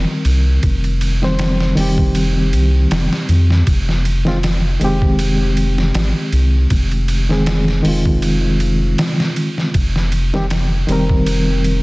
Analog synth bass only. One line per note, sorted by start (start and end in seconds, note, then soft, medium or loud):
0.25 0.59 C2 medium
0.63 1.74 F1 loud
1.77 2.54 F1 medium
2.52 2.87 C2 loud
2.91 3.09 F1 medium
3.29 3.63 F2 medium
3.67 4.78 F1 loud
4.81 5.92 F1 medium
5.95 6.13 G#1 loud
6.32 6.66 C2 medium
6.71 7.81 F1 loud
7.84 8.95 F1 medium
9.74 10.85 F1 loud
10.88 11.83 F1 medium